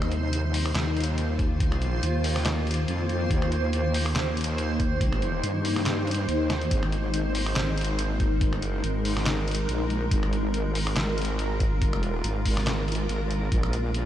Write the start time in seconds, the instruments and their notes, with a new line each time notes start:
Already playing: wobble bass D#2, ambient pad D#3 A#3 F4, synth texture C5
0.02 finger snap
0.12 closed hi-hat
0.33 closed hi-hat
0.54 open hi-hat
0.66 finger snap
0.75 wobble bass D#2, snare, clap, closed hi-hat
0.97 closed hi-hat
1.00 closed hi-hat
1.04 closed hi-hat
1.18 closed hi-hat
1.39 kick, closed hi-hat
1.60 kick, closed hi-hat
1.72 finger snap
1.76 wobble bass C2
1.82 closed hi-hat
2.03 wobble bass D#2, closed hi-hat
2.24 open hi-hat
2.36 finger snap, snare
2.46 snare, clap, closed hi-hat
2.67 closed hi-hat
2.71 closed hi-hat
2.74 closed hi-hat
2.88 wobble bass F2, closed hi-hat
3.09 closed hi-hat
3.31 wobble bass D#2, ambient pad D#4, kick, closed hi-hat
3.42 finger snap
3.52 closed hi-hat
3.73 closed hi-hat
3.94 open hi-hat
4.06 finger snap
4.16 wobble bass D#2, snare, clap, closed hi-hat
4.37 closed hi-hat
4.41 closed hi-hat
4.44 closed hi-hat
4.58 closed hi-hat
4.80 kick, closed hi-hat
5.01 kick, closed hi-hat
5.13 finger snap
5.22 closed hi-hat
5.43 wobble bass G2, closed hi-hat
5.65 open hi-hat
5.76 finger snap, snare
5.86 snare, clap, closed hi-hat
6.07 closed hi-hat
6.11 closed hi-hat
6.14 closed hi-hat
6.29 wobble bass D#2, closed hi-hat
6.50 snare, closed hi-hat
6.61 closed hi-hat
6.71 wobble bass G#1, ambient pad G#3 A#4, synth texture A#4, kick, closed hi-hat
6.83 finger snap
6.92 closed hi-hat
7.14 closed hi-hat
7.35 open hi-hat
7.46 finger snap
7.56 wobble bass G#1, snare, clap, closed hi-hat
7.78 closed hi-hat
7.81 closed hi-hat
7.85 closed hi-hat
7.99 closed hi-hat
8.20 kick, closed hi-hat
8.41 kick, closed hi-hat
8.45 wobble bass G1
8.53 finger snap
8.62 closed hi-hat
8.70 wobble bass F#1
8.84 wobble bass G#1, closed hi-hat
9.05 open hi-hat
9.17 finger snap, snare
9.26 snare, clap, closed hi-hat
9.48 closed hi-hat
9.51 closed hi-hat
9.55 closed hi-hat
9.69 wobble bass A#1, closed hi-hat
9.90 closed hi-hat
10.11 wobble bass G#1, ambient pad F4, kick, closed hi-hat
10.23 finger snap
10.33 closed hi-hat
10.54 closed hi-hat
10.75 open hi-hat
10.87 finger snap
10.96 wobble bass G#1, snare, clap, closed hi-hat
11.18 closed hi-hat
11.22 closed hi-hat
11.25 closed hi-hat
11.39 closed hi-hat
11.60 kick, closed hi-hat
11.82 kick, closed hi-hat
11.93 finger snap
11.97 wobble bass F1
12.03 closed hi-hat
12.24 wobble bass G#1, closed hi-hat
12.45 kick, open hi-hat
12.57 finger snap, snare
12.67 snare, clap, closed hi-hat
12.88 closed hi-hat
12.92 closed hi-hat
12.95 closed hi-hat
13.09 wobble bass G#1, closed hi-hat
13.31 closed hi-hat
13.52 wobble bass A#1, kick, closed hi-hat
13.63 finger snap
13.73 closed hi-hat
13.94 closed hi-hat